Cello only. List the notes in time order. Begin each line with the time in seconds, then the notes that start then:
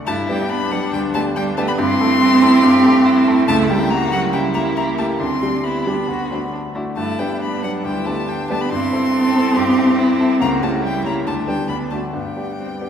0.06 A3
0.29 G3
0.50 B3
0.70 F#3
0.93 G3
1.15 A3
1.35 G3
1.57 A3
1.68 B3
1.78 C4
3.48 A3
3.70 G3
3.90 A#3
4.13 F#3
4.34 G3
4.56 A#3
4.76 A#3
4.98 A3
5.21 C4
5.64 B3
6.97 A3
7.21 G3
7.42 B3
7.64 F#3
7.84 G3
8.07 A3
8.28 G3
8.51 A3
8.62 B3
8.71 C4
10.40 A#3
10.62 A3
10.83 G3
11.05 A#3
11.26 A3
11.47 G3
11.69 B3
11.91 A3
12.14 G3